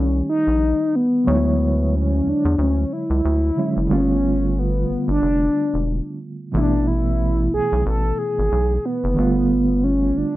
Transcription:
0.00 0.22 C2 medium
0.00 1.21 D#3 medium
0.00 1.22 G3 soft
0.00 1.21 A3 soft
0.00 0.29 C#4 medium
0.00 1.23 D#4 medium
0.00 1.23 G4 medium
0.30 0.97 D#4 medium
0.47 0.73 A#1 medium
0.96 1.97 B3 medium
1.24 2.22 D2 loud
1.24 3.52 D3 medium
1.24 3.52 F#3 medium
1.24 3.53 G#3 medium
1.24 3.53 C#5 medium
1.29 1.35 D#4 soft
1.35 3.57 E4 medium
1.95 2.30 C#4 medium
2.26 2.34 E2 soft
2.26 2.63 D4 medium
2.45 2.56 E2 medium
2.58 2.85 D2 medium
2.58 2.94 C#4 medium
2.93 3.91 E4 loud
3.10 3.21 C#2 medium
3.25 3.51 D2 medium
3.56 3.86 D3 soft
3.56 3.90 F#3 soft
3.56 3.90 G#3 soft
3.56 3.90 C#4 soft
3.56 3.91 E4 soft
3.77 3.88 F#1 medium
3.87 4.85 G1 loud
3.87 6.48 D3 medium
3.87 6.49 G3 medium
3.87 6.50 A3 medium
3.92 3.98 A#3 soft
3.92 4.60 C#4 medium
3.92 6.51 F4 medium
3.98 6.54 B3 soft
4.59 5.09 B3 medium
4.90 4.97 G1 soft
5.08 5.19 G1 medium
5.08 6.18 D4 medium
5.22 5.49 F1 loud
5.74 6.00 E1 medium
6.52 7.49 A1 loud
6.52 6.60 C3 soft
6.52 9.13 E3 medium
6.52 9.14 A3 medium
6.52 9.14 B3 soft
6.56 9.16 B2 medium
6.56 6.89 D4 loud
6.56 9.15 E4 medium
6.87 7.53 E4 loud
7.54 7.61 B1 soft
7.54 7.84 G#4 loud
7.72 7.83 B1 medium
7.86 8.12 A1 medium
7.86 8.20 A4 loud
8.18 8.87 G#4 loud
8.39 8.49 G#1 medium
8.52 8.78 B1 medium
8.85 9.85 B3 loud
9.04 9.15 F#1 medium
9.14 10.12 G1 medium
9.14 10.36 D3 medium
9.14 10.36 G3 medium
9.14 10.36 A3 medium
9.19 10.36 B3 medium
9.19 10.36 F4 medium
9.84 10.19 C#4 medium
10.17 10.24 G1 soft
10.17 10.36 D4 medium

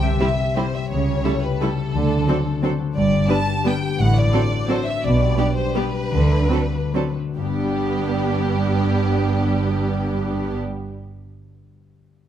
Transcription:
0.00 0.16 C2 soft
0.00 0.16 C3 soft
0.00 0.92 C3 soft
0.00 1.06 G3 soft
0.00 0.20 G4 soft
0.05 0.58 E5 soft
0.20 0.28 G3 soft
0.20 0.28 C4 soft
0.20 0.28 E4 soft
0.20 0.28 G4 soft
0.20 0.73 G4 soft
0.39 0.91 C4 soft
0.56 0.65 G3 soft
0.56 0.64 C4 soft
0.56 0.65 E4 soft
0.56 0.64 G4 soft
0.56 0.91 C5 soft
0.56 0.74 C5 soft
0.74 1.41 G4 soft
0.74 0.91 E5 soft
0.90 1.18 C#2 soft
0.90 1.95 C#3 soft
0.90 1.19 C#3 soft
0.90 1.41 C#5 medium
1.07 1.95 G3 soft
1.25 1.33 G3 soft
1.25 1.33 A3 soft
1.25 1.33 E4 soft
1.25 1.95 E4 soft
1.25 1.33 A4 soft
1.42 1.76 G4 soft
1.42 1.60 B4 soft
1.59 1.69 G3 soft
1.59 1.68 A3 soft
1.59 1.70 E4 soft
1.59 2.97 A4 soft
1.59 2.80 A4 soft
1.59 1.70 A4 soft
1.77 1.95 G4 soft
1.93 2.21 D2 soft
1.93 2.21 D3 soft
1.93 2.97 D3 soft
2.10 2.97 A3 soft
2.27 2.36 F#3 soft
2.27 2.36 C4 soft
2.27 3.29 D4 soft
2.27 2.37 D4 soft
2.27 2.37 A4 soft
2.44 2.79 F#4 soft
2.62 2.70 F#3 soft
2.62 2.70 C4 soft
2.62 2.72 D4 soft
2.62 2.72 A4 soft
2.62 2.97 C5 soft
2.80 2.97 F#4 soft
2.96 3.24 G1 soft
2.96 4.00 G2 soft
2.96 3.24 G2 soft
2.96 3.27 D5 medium
3.12 3.99 D3 soft
3.28 3.37 G3 soft
3.28 3.36 B3 soft
3.28 3.37 D4 soft
3.28 4.32 D4 soft
3.28 3.37 B4 soft
3.28 3.65 A5 medium
3.48 3.81 G4 soft
3.64 3.72 G3 soft
3.64 3.73 B3 soft
3.64 3.73 D4 soft
3.64 3.73 B4 soft
3.64 4.00 B4 soft
3.64 3.99 G5 medium
3.82 3.99 G4 soft
3.98 4.27 A1 soft
3.98 5.05 A2 soft
3.98 4.27 A2 soft
3.98 4.15 F#5 medium
4.15 5.05 A3 soft
4.15 4.69 D5 medium
4.32 4.40 F#3 soft
4.32 4.41 C4 soft
4.32 4.41 D4 soft
4.32 5.37 D4 soft
4.32 4.41 A4 soft
4.52 4.86 F#4 soft
4.68 4.76 F#3 soft
4.68 4.76 C4 soft
4.68 4.77 D4 soft
4.68 4.78 A4 soft
4.68 5.05 C5 soft
4.68 4.87 C5 medium
4.86 5.05 F#4 soft
4.86 5.03 E5 medium
5.03 5.32 B1 soft
5.03 6.13 B2 soft
5.03 5.32 B2 soft
5.03 5.56 D5 medium
5.21 6.14 G3 soft
5.38 5.46 G3 soft
5.38 5.46 B3 soft
5.38 6.50 D4 soft
5.38 5.47 D4 soft
5.38 5.46 G4 soft
5.56 5.93 G4 soft
5.56 5.74 C5 medium
5.75 5.83 G3 soft
5.75 5.83 B3 soft
5.75 5.84 D4 soft
5.75 5.84 G4 soft
5.75 7.16 B4 medium
5.75 6.14 B4 soft
5.94 6.14 G4 soft
6.12 6.44 D2 soft
6.12 7.38 D3 soft
6.12 6.45 D3 soft
6.30 7.38 A3 soft
6.50 6.58 F#3 soft
6.50 6.58 C4 soft
6.50 7.56 D4 soft
6.50 6.59 D4 soft
6.50 6.61 A4 soft
6.72 7.14 F#4 soft
6.94 7.02 F#3 soft
6.94 7.02 C4 soft
6.94 7.03 D4 soft
6.94 7.04 A4 soft
6.94 7.38 C5 soft
7.16 7.38 F#4 soft
7.35 10.57 G1 soft
7.35 11.26 G2 soft
7.35 10.56 G2 soft
7.35 10.55 G3 soft
7.35 10.55 B3 soft
7.35 10.58 D4 soft
7.35 10.58 G4 soft
7.43 11.00 G3 soft
7.50 10.70 B3 soft
7.57 10.77 D4 soft
7.64 10.84 G4 soft
7.71 10.91 D5 soft

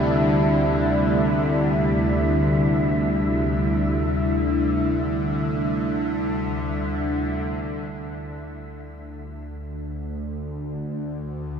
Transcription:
0.00 7.91 D2 medium
0.00 7.92 D2 medium
0.00 7.93 C3 medium
0.00 7.91 D3 medium
0.00 7.91 G3 medium
0.00 7.92 D4 medium
0.00 7.92 E4 medium
0.00 7.96 E5 medium
7.92 11.60 D2 medium
7.92 11.60 D3 medium

